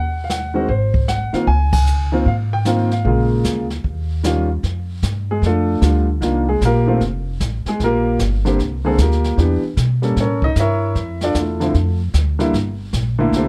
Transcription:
Already playing: upright bass D#2, grand piano F#5
0.24 grand piano F5
0.30 grand piano F#5, snare, hi-hat pedal
0.54 grand piano D#3 G#3 C4 F#4
0.68 upright bass G#1, grand piano C5, brush sweep, kick
0.94 kick
1.08 grand piano F#5, snare, hi-hat pedal
1.33 grand piano D#3 A#3 C4 F4 F5, muted upright bass stroke, snare
1.47 upright bass C#2, grand piano G#5, brush sweep, kick
1.73 grand piano G#5, kick, crash
1.86 hi-hat pedal
2.12 grand piano D#3 A#3 C4 F4
2.26 upright bass G#2, grand piano F5, brush sweep, kick
2.53 grand piano G5
2.65 grand piano D#3 A#3 C4 F4, snare, hi-hat pedal
2.91 grand piano F5, snare
3.04 upright bass A#1, grand piano C#3 G#3 A#3 F4, brush sweep, kick
3.44 upright bass D2, snare, hi-hat pedal
3.70 snare
3.84 upright bass D#2, brush sweep, kick
4.23 grand piano D#3 G3 C#4 F4, snare, hi-hat pedal
4.63 upright bass F2, brush sweep, kick, snare
5.03 upright bass G2, kick, snare, hi-hat pedal
5.31 grand piano G#3 G#4
5.42 upright bass F2, brush sweep, kick, snare
5.46 grand piano A3 D4 F4 A4
5.82 upright bass D2, grand piano D3 G3 A3 F4, kick, snare, hi-hat pedal
6.21 upright bass C2, grand piano D#3 A#3 D4 F4, brush sweep, kick, snare
6.49 grand piano G#3 G#4
6.61 upright bass A#1, kick, snare, hi-hat pedal
6.65 grand piano A#3 F4 G4 A#4
6.86 grand piano D#3 A3 C4 F4
7.01 upright bass F1, brush sweep, kick, snare
7.40 upright bass A1, kick, snare, hi-hat pedal
7.65 grand piano G#3 G#4, muted upright bass stroke, snare
7.80 upright bass A#1, brush sweep, kick, snare
7.84 grand piano A#3 F4 G4 A#4
8.19 upright bass G1, kick, snare, hi-hat pedal
8.45 grand piano D3 A#3 C4 G4, snare
8.59 upright bass C2, brush sweep, kick, snare
8.84 grand piano D3 G#3 A#3 C4 G#4 A4
8.98 upright bass D2, grand piano A#3 F4 G4 A#4, kick, snare, hi-hat pedal
9.12 snare
9.24 snare
9.37 upright bass E2, grand piano E3 B3 D4 G4, brush sweep, kick, snare
9.77 upright bass B2, kick, snare, hi-hat pedal
10.02 grand piano G3 A#3 C#4 A4, snare
10.16 upright bass A2, brush sweep, kick, snare
10.20 grand piano C#4 A4 A#4 C#5
10.42 grand piano D#4 D#5, kick
10.56 upright bass G2, grand piano E5, kick, snare, hi-hat pedal
10.60 grand piano E4 A#4 C#5
10.95 upright bass F2, brush sweep, kick, snare
11.21 grand piano D4 F4 A4 D5, snare
11.35 upright bass E2, kick, snare, hi-hat pedal
11.39 grand piano A3 E4 F4 A4
11.60 grand piano D3 F3 C4 E4, snare
11.74 upright bass F2, brush sweep, kick, snare
12.14 upright bass D2, kick, snare, hi-hat pedal
12.39 grand piano D3 G3 A#3 E4, snare
12.53 upright bass G1, brush sweep, kick, snare
12.93 upright bass A#1, kick, snare, hi-hat pedal
13.18 grand piano D3 A3 A#3 E4
13.32 upright bass C2, grand piano C4, brush sweep, kick, snare
13.37 grand piano G4 A4 C5

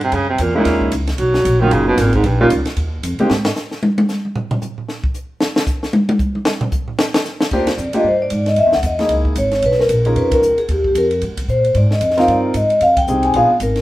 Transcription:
Already playing: upright bass G2
0.01 baritone saxophone C3, ride
0.12 upright bass F#2, baritone saxophone C#3, kick, ride
0.29 baritone saxophone C3
0.38 upright bass E2, baritone saxophone A#2, kick, hi-hat pedal, ride
0.55 baritone saxophone A#2, grand piano G#3 A#3 C#4 D#4 E4
0.65 upright bass D#2, kick, snare, ride
0.81 kick
0.92 upright bass C#2, hi-hat pedal, ride
1.07 snare, ride
1.18 upright bass B1, baritone saxophone F#3, kick, ride
1.34 snare
1.45 upright bass A#1, kick, hi-hat pedal, ride
1.61 baritone saxophone D#3, grand piano F#3 A#3 C#4 D#4 F4
1.71 upright bass F#1, baritone saxophone C#3, kick, ride
1.88 baritone saxophone B2
1.97 upright bass G#1, baritone saxophone A#2, kick, snare, hi-hat pedal, ride
2.13 baritone saxophone G#2, kick, ride
2.24 upright bass A#1, baritone saxophone G2, kick, ride
2.40 baritone saxophone A#2, grand piano G3 A#3 C#4 D#4 F4
2.50 upright bass C#2, kick, hi-hat pedal, ride
2.65 muted upright bass stroke, snare, ride
2.76 upright bass D#2, kick, ride
3.03 upright bass F2, kick, hi-hat pedal, ride
3.19 grand piano G#3 A#3 C4 D#4 G4, muted upright bass stroke, ride
3.30 upright bass G#2, snare
3.45 snare
3.56 snare, hi-hat pedal
3.71 snare
3.83 high tom
3.98 high tom
4.09 snare, hi-hat pedal
4.25 high tom
4.36 floor tom
4.51 floor tom
4.62 floor tom, hi-hat pedal
4.78 floor tom
4.89 snare
5.04 kick
5.14 hi-hat pedal
5.41 snare
5.56 snare
5.67 kick, hi-hat pedal
5.83 snare
5.93 high tom
6.09 high tom
6.19 kick, hi-hat pedal
6.35 high tom
6.45 snare
6.61 floor tom
6.72 kick, hi-hat pedal
6.88 floor tom
6.99 snare
7.14 snare
7.25 snare, hi-hat pedal
7.41 snare
7.51 upright bass D#2, grand piano A#3 D4 F4 G4, vibraphone C5, kick, crash
7.67 vibraphone D5, snare, ride
7.78 upright bass F2, hi-hat pedal
7.93 grand piano A#3 D4 F4 G4, vibraphone D#5, muted upright bass stroke, ride
8.04 upright bass G2, kick
8.08 vibraphone C5
8.22 vibraphone D5
8.30 upright bass G#2, kick, hi-hat pedal, ride
8.46 vibraphone D#5, snare, ride
8.56 upright bass F#2, vibraphone E5, kick, ride
8.66 upright bass E2
8.72 upright bass C#2, vibraphone F#5, snare
8.83 upright bass E2, vibraphone D#5, kick, hi-hat pedal, ride
8.99 grand piano A#3 D#4 E4 G#4, snare, ride
9.09 upright bass C#2, kick, ride
9.25 kick
9.35 upright bass G#1, vibraphone C#5, hi-hat pedal, ride
9.51 snare, ride
9.62 upright bass B1, vibraphone B4, kick, ride
9.72 snare
9.79 vibraphone A#4, snare
9.89 upright bass A#1, kick, hi-hat pedal, ride
10.05 grand piano C#4 D#4 F4 A#4, vibraphone G#4, ride
10.16 upright bass F2, vibraphone B4, kick, ride
10.32 vibraphone A#4, kick, ride
10.42 upright bass C#2, hi-hat pedal
10.57 vibraphone G#4, muted upright bass stroke, ride
10.68 upright bass D#2, vibraphone G4, kick, ride
10.84 vibraphone G4, kick
10.95 upright bass F2, vibraphone A#4, kick, hi-hat pedal, ride
11.11 ride
11.22 upright bass G2, kick, ride
11.31 upright bass D#2
11.37 upright bass C#2, kick, ride
11.48 upright bass A#2, vibraphone C5, kick, hi-hat pedal
11.64 ride
11.75 upright bass G#2, vibraphone D5, kick, ride
11.91 vibraphone D#5, snare
12.01 upright bass F2, kick, hi-hat pedal, ride
12.10 snare
12.17 grand piano C4 D#4 F4 A#4, vibraphone F5, snare, ride
12.28 upright bass G2, vibraphone D5, kick, ride
12.54 upright bass G#2, vibraphone D#5, kick, hi-hat pedal, ride
12.70 ride
12.80 upright bass F2, vibraphone F5, kick, ride
12.97 vibraphone G5, kick, ride
13.07 upright bass C2, grand piano C4 D#4 G4 G#4, hi-hat pedal
13.23 vibraphone G#5, ride
13.33 upright bass A#1, grand piano B3 D4 F4 G#4, vibraphone F5, kick, ride
13.50 muted upright bass stroke
13.60 upright bass G#1, vibraphone A#4, kick, hi-hat pedal, ride
13.76 snare, ride

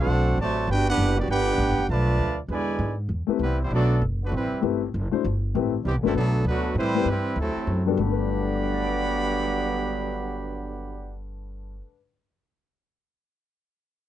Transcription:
0.00 trombone section A3 C4 F#4, trumpet section D4 A4 C5 F#5
0.07 upright bass B1
0.38 upright bass A1, trombone section A3, trumpet section F#4 D5 A5
0.42 trombone section C3 F#3, trumpet section C5
0.67 upright bass G1, trombone section B3 D4 G4, trumpet section F#4 G5
0.72 trumpet section D4 B4
0.89 trombone section B3 D4 G4, trumpet section D4 G4 B4 F#5
0.98 upright bass F#1
1.18 trombone section F#3 B3 D4, trumpet section B3 F#4 G4 D5
1.27 upright bass G1, trombone section B3 D4 G4, trumpet section D4 F#5 G5
1.32 trumpet section B4
1.58 upright bass A1
1.68 upright bass G1
1.78 upright bass F#1
1.89 upright bass B1, trombone section D3 F3 A3, trumpet section F4 B4 D5 A5
2.19 upright bass D2
2.48 upright bass E2, trombone section B2 D3 G#3, trumpet section B4 G#5
2.52 trumpet section E4 D5
2.79 upright bass G#2
3.09 upright bass E2
3.27 grand piano A3 C4 E4 G4 B4, muted upright bass stroke
3.39 upright bass C2, trombone section E3 G3 B3, trumpet section G3 B4
3.44 trumpet section C4 E4
3.62 trombone section E3 G3 C4, trumpet section G3 B3 E4 C5
3.70 upright bass B1, trombone section F#3 A3 D4, trumpet section F#4
3.75 trumpet section B3 A4 D5
4.02 upright bass F#1
4.22 trombone section D3 F#3 B3, trumpet section A3 D4 F#4 B4
4.32 upright bass A1, trombone section E3 G3 C4
4.37 trumpet section G3 C4 E4 B4
4.52 muted upright bass stroke
4.61 upright bass G1, grand piano A3 C4 E4 G4 B4
4.94 upright bass F#1
5.11 grand piano A3 D4 E4 F#4 C5, muted upright bass stroke
5.24 upright bass G1
5.55 upright bass A1, grand piano A3 C4 E4 G4 B4
5.85 upright bass C2, trombone section C3 E3 G3, trumpet section B3 C4 G4
5.95 upright bass A1
6.03 upright bass G1, trombone section C3 E3 A3, grand piano A3 B3 D4 F#4 B4
6.07 trumpet section G3 C4 E4 A4
6.15 upright bass B1, trombone section D3 F#3 A3, trumpet section F#3 B3 D4 A4
6.44 upright bass D2, trombone section D3 F#3 B3, trumpet section A3 F#4 B4
6.48 trumpet section D4
6.75 upright bass A2, trombone section E3 G3 C4, trumpet section G3 B4 C5
6.79 trumpet section E4
6.95 grand piano A3 C4 E4 G4 B4
7.05 upright bass G2
7.10 trombone section E3 G3 C4, trumpet section G3 C4 E4 B4
7.36 upright bass D2
7.40 trombone section C3 F#3 A3, trumpet section F#3 C4 E4 A4
7.56 muted upright bass stroke
7.67 upright bass F#2
7.86 grand piano G2 G3 B3 D4 F#4 A4
7.92 grand piano D3
7.97 upright bass G1, trombone section G2 D3 F#3 B3, grand piano A3, trumpet section G4 D5 F#5 B5
8.05 grand piano D4
8.11 grand piano B4
8.30 grand piano D5
8.36 grand piano F#5
8.45 grand piano A5
8.54 grand piano D6
8.63 grand piano F#6
8.74 grand piano A6
8.87 grand piano D7

